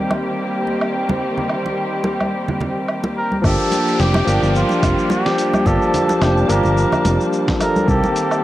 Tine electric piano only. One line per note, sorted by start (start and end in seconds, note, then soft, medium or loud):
0.00 3.39 D#3 medium
0.00 3.40 A#3 medium
0.00 3.41 C4 medium
0.00 3.42 G4 medium
3.42 4.23 F3 loud
3.42 4.24 A#3 medium
3.42 4.25 D4 medium
3.47 4.25 G4 loud
4.25 5.62 F3 medium
4.25 5.63 A#3 medium
4.25 5.64 D4 medium
4.30 5.64 G4 loud
5.65 5.78 F3 medium
5.65 5.78 A#3 medium
5.65 5.79 D4 medium
5.65 5.79 G4 loud
6.47 7.56 F3 medium
6.47 7.57 A#3 medium
6.47 7.58 D4 medium
6.52 7.59 G4 loud
7.59 7.85 F3 medium
7.59 7.85 A#3 medium
7.59 7.85 D4 medium
7.59 7.86 A4 medium
7.86 8.44 D#3 medium
7.86 8.44 A#3 medium
7.86 8.44 C4 medium
7.90 8.44 G4 loud